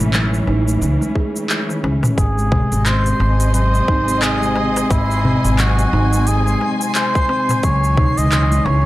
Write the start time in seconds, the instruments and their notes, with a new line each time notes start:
Already playing: string section E3 C#4
0.00 upright bass A1, shaker
0.13 steel tongue drum F#3, clap, shaker
0.34 shaker
0.47 upright bass A1, steel tongue drum D#4, darbuka tek
0.67 steel tongue drum A3, darbuka ka, shaker
0.82 upright bass C#2, shaker
1.01 steel tongue drum G#3, darbuka tek, shaker
1.15 steel tongue drum G#4, kick, darbuka ka
1.36 shaker
1.50 clap, shaker
1.69 steel tongue drum D#3, darbuka ka, shaker
1.83 upright bass C#2, steel tongue drum C#4, darbuka tek
2.03 mid tom, darbuka ka, darbuka tek, shaker
2.18 upright bass G#1, string section C3, muted trumpet G#4, synth texture C6, kick, open hi-hat, shaker
2.29 string section C4
2.38 steel tongue drum G#3, shaker
2.52 steel tongue drum G#3, kick, darbuka dum
2.61 string section D#5
2.72 upright bass G#1, open hi-hat, shaker
2.86 muted trumpet C5, clap, open hi-hat, shaker
3.06 open hi-hat, shaker
3.20 upright bass G#1, steel tongue drum C4, darbuka tek
3.27 string section G#5
3.40 open hi-hat, darbuka ka, shaker
3.54 steel tongue drum F#3, muted trumpet C5, open hi-hat, shaker
3.75 shaker
3.88 upright bass G#1, steel tongue drum D#4, kick, darbuka tek
4.08 steel tongue drum G#3, open hi-hat, shaker
4.22 muted trumpet G#4, clap, open hi-hat, shaker
4.42 steel tongue drum G#3, shaker
4.56 steel tongue drum G#3, darbuka ka, darbuka tek
4.76 open hi-hat, darbuka ka, darbuka tek, shaker
4.90 upright bass G#1, muted trumpet E4, kick, open hi-hat, darbuka tek, shaker
5.11 shaker
5.25 steel tongue drum C4, darbuka dum
5.44 upright bass G#1, open hi-hat, shaker
5.59 steel tongue drum F#3, muted trumpet F#4, clap, open hi-hat, shaker
5.79 open hi-hat, shaker
5.93 upright bass G#1, steel tongue drum D#4, darbuka tek
6.13 steel tongue drum G#3, open hi-hat, shaker
6.27 muted trumpet G#4, open hi-hat, shaker
6.46 steel tongue drum G#3, darbuka tek, shaker
6.61 steel tongue drum G#3, darbuka ka
6.81 open hi-hat, shaker
6.95 muted trumpet C5, clap, open hi-hat, shaker
7.15 kick, darbuka ka, shaker
7.29 steel tongue drum C4, darbuka tek
7.49 mid tom, open hi-hat, darbuka ka, darbuka tek, shaker
7.63 upright bass C#2, string section E3, steel tongue drum F#3, muted trumpet C#5, kick, open hi-hat, shaker
7.76 string section C#4
7.84 shaker
7.97 steel tongue drum D#4, kick, darbuka dum
8.17 upright bass C#2, steel tongue drum G#3, muted trumpet D#5, open hi-hat, shaker
8.32 clap, open hi-hat, shaker
8.52 steel tongue drum G#3, open hi-hat, shaker
8.65 upright bass C#2, steel tongue drum E3, muted trumpet C#5, darbuka tek